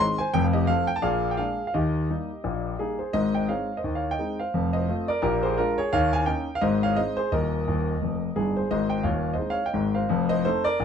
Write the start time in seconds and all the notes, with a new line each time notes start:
0.00 D#3 G#3 C4 D#5 C6
0.18 C5 G#5
0.34 F1 F2 G5
0.44 F5
0.53 G4 D#5
0.67 F3 A3 C4 A4 F5
0.87 G5
0.96 A5
1.02 A#1 A#2 G#4 F5
1.31 G5
1.37 G#3 A#3 D4 G#4 F5
1.67 F5
1.74 D#2 D#3 G4 D#5
2.10 G3 A#3 D#4
2.44 A#1 A#2
2.79 G3 A#3 D#4 G#4
2.99 G#4 C5
3.13 G#1 G#2 C5 D#5
3.35 D#5 G5
3.49 G#3 C4 D#4 C#5 F5
3.77 C5 D#5
3.84 D#2 D#3
3.95 C#5 F5
4.11 D#5 G5
4.19 G#3 C4 D#4
4.39 C5 F5
4.54 F1 F2
4.73 C5 D#5
4.89 A3 C4 F4
5.08 A#4 D5
5.22 A#1 A#2 G4 A#4
5.43 G#4 C5
5.58 G#3 D4 F4 A#4
5.78 G#4 C#5
5.93 D#2 D#3 C#5 F5
6.13 F5 G#5
6.26 A#3 C#4 D#4 D#5 G5
6.55 F5
6.61 G#1 G#2 C5 D#5
6.83 C#5 F5
6.96 G#3 C4 D#4 C5 D#5
7.17 G#4 C5
7.32 D#1 D#2 A#4 D#5
7.68 D#1 D#2
8.01 F1 F2
8.36 G1 G2 D#4 G#4
8.56 G#4 C5
8.71 G#1 G#2 C5 D#5
8.90 D#5 G5
9.03 D#1 D#2 C#5 F5
9.33 C5 D#5
9.39 G#3 C4 D#4
9.50 C#5 F5
9.66 D#5 G5
9.74 G#1 G#2
9.95 C5 F5
10.09 F1 F2
10.29 C5 D#5
10.45 A3 C4 D#4 A4 C5
10.64 A#4 D5
10.80 A#1 A#2